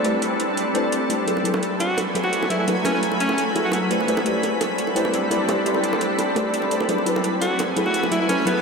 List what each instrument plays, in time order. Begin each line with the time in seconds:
Already playing: ambient pad G3 C4 D4 A4 B5
0.03 synth stab A3 E4 G4 B4 C5 D5, closed hi-hat
0.22 closed hi-hat
0.40 closed hi-hat
0.57 closed hi-hat
0.74 synth stab A3 E4 G4 B4 C5 D5, closed hi-hat
0.92 closed hi-hat
1.09 synth stab A3 E4 G4 B4 C5 D5, closed hi-hat
1.26 synth stab F#3 E4 G#4 A4 B4, ambient pad F#3 A3 E4 G#5 B5, closed hi-hat
1.37 high bongo
1.43 synth stab F#3 E4 G#4 A4 B4, closed hi-hat
1.54 high bongo
1.63 closed hi-hat
1.80 alto saxophone F#4, closed hi-hat, high bongo
1.98 closed hi-hat, high bongo
2.14 synth stab F#3 E4 G#4 A4 B4, closed hi-hat
2.24 alto saxophone F#4, high bongo
2.33 closed hi-hat
2.43 high bongo
2.49 synth stab F#3 E4 G#4 A4 B4, alto saxophone E4, closed hi-hat
2.59 alto saxophone E4
2.67 synth stab F#3 E4 G#4 A4 B4, closed hi-hat, high bongo
2.84 synth stab F#3 E4 G#4 A4 B4, alto saxophone C#4, closed hi-hat, high bongo
2.94 alto saxophone C#4
3.03 closed hi-hat
3.12 high bongo
3.20 alto saxophone C#4, closed hi-hat
3.29 high bongo
3.38 closed hi-hat
3.55 synth stab F#3 E4 G#4 A4 B4, closed hi-hat, high bongo
3.65 alto saxophone F#4
3.72 alto saxophone F#4, closed hi-hat, high bongo
3.90 ambient pad G3 C4 D4 A4, synth stab A3 E4 G4 B4 C5 D5, closed hi-hat
4.00 high bongo
4.08 synth stab A3 E4 G4 B4 C5 D5, closed hi-hat
4.17 high bongo
4.24 synth stab A3 E4 G4 B4 C5 D5, closed hi-hat
4.43 closed hi-hat, high bongo
4.61 closed hi-hat, high bongo
4.78 closed hi-hat
4.87 high bongo
4.95 synth stab A3 E4 G4 B4 C5 D5, closed hi-hat
5.05 high bongo
5.14 closed hi-hat
5.30 synth stab A3 E4 G4 B4 C5 D5, closed hi-hat, high bongo
5.48 synth stab A3 E4 G4 B4 C5 D5, closed hi-hat, high bongo
5.64 synth stab A3 E4 G4 B4 C5 D5, closed hi-hat
5.74 high bongo
5.84 closed hi-hat
5.93 high bongo
6.01 closed hi-hat
6.18 closed hi-hat, high bongo
6.35 synth stab A3 E4 G4 B4 C5 D5, closed hi-hat, high bongo
6.54 closed hi-hat
6.62 high bongo
6.71 synth stab A3 E4 G4 B4 C5 D5, closed hi-hat
6.80 high bongo
6.88 synth stab F#3 E4 G#4 A4 B4, ambient pad F#3 A3 E4 G#5 B5, closed hi-hat
6.98 high bongo
7.05 synth stab F#3 E4 G#4 A4 B4, closed hi-hat
7.16 high bongo
7.24 closed hi-hat
7.41 alto saxophone F#4, closed hi-hat, high bongo
7.59 closed hi-hat, high bongo
7.76 synth stab F#3 E4 G#4 A4 B4, closed hi-hat
7.86 alto saxophone F#4, high bongo
7.94 closed hi-hat
8.03 high bongo
8.11 synth stab F#3 E4 G#4 A4 B4, alto saxophone E4, closed hi-hat
8.21 alto saxophone E4
8.28 synth stab F#3 E4 G#4 A4 B4, alto saxophone C#4, closed hi-hat, high bongo
8.45 synth stab F#3 E4 G#4 A4 B4, alto saxophone B3, closed hi-hat, high bongo